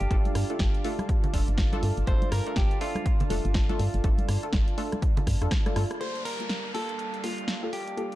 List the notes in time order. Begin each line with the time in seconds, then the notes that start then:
Already playing: D4 F4 G4 A4 D5 F5 A5
0.01 G1, closed hi-hat
0.11 G1 A3 D4 F4 A4, kick, closed hi-hat
0.25 closed hi-hat, high conga
0.35 G2, cross-stick, open hi-hat
0.50 A3 D4 F4 A4, closed hi-hat
0.59 G1, kick, snare, closed hi-hat, high conga
0.74 closed hi-hat
0.84 A3 D4 F4 A4, open hi-hat
0.99 cross-stick, closed hi-hat, high conga
1.09 kick, closed hi-hat
1.24 closed hi-hat, low conga
1.34 F1 A3 D4 F4 A4, kick, open hi-hat, high conga
1.48 G1, closed hi-hat
1.58 kick, snare, closed hi-hat
1.73 A3 D4 F4 A4, closed hi-hat, high conga
1.83 G2, open hi-hat
1.97 G1, closed hi-hat
2.07 G1 A3 D4 F4 A4 C5, kick, closed hi-hat
2.22 closed hi-hat, high conga
2.32 G2 A#4, cross-stick, open hi-hat
2.47 A3 D4 F4 A4, closed hi-hat
2.56 G1 G4, kick, snare, closed hi-hat, high conga
2.71 closed hi-hat
2.81 A3 D4 F4 A4, open hi-hat
2.95 cross-stick, closed hi-hat, high conga
3.06 kick, closed hi-hat
3.20 closed hi-hat, low conga
3.30 F1 A3 D4 F4 A4, open hi-hat, high conga
3.45 G1, closed hi-hat
3.54 kick, snare, closed hi-hat
3.69 A3 D4 F4 A4, closed hi-hat, high conga
3.79 G2, open hi-hat
3.94 G1, closed hi-hat
4.04 G1 A3 D4 F4 A4, kick, closed hi-hat
4.18 closed hi-hat, high conga
4.29 G2, cross-stick, open hi-hat
4.43 A3 D4 F4 A4, closed hi-hat
4.53 G1, kick, snare, closed hi-hat, high conga
4.68 closed hi-hat
4.78 A3 D4 F4 A4, open hi-hat
4.92 cross-stick, closed hi-hat, high conga
5.02 kick, closed hi-hat
5.17 closed hi-hat, low conga
5.27 G2, kick, cross-stick, open hi-hat, high conga
5.42 F2 A3 D4 F4 A4, cross-stick, closed hi-hat
5.51 kick, cross-stick, snare, closed hi-hat
5.66 A3 D4 F4 A4, cross-stick, closed hi-hat, high conga
5.76 G2 A3 D4 F4 A4, cross-stick, open hi-hat
5.91 cross-stick, closed hi-hat
6.01 G3 A#3 F4 G4 A4 C5 D5 F5 A5, closed hi-hat, downlifter
6.15 closed hi-hat
6.25 A#4, open hi-hat
6.40 A#3 F4 G4 A4, closed hi-hat
6.49 snare, closed hi-hat
6.74 A#3 F4 G4 A4, open hi-hat
6.89 closed hi-hat
6.99 closed hi-hat
7.14 closed hi-hat
7.24 A#3 F4 G4 A4, open hi-hat
7.38 closed hi-hat
7.48 snare, closed hi-hat
7.63 A#3 F4 G4 A4
7.73 G4, open hi-hat
7.88 closed hi-hat
7.97 A#3 F4 G4 A4, closed hi-hat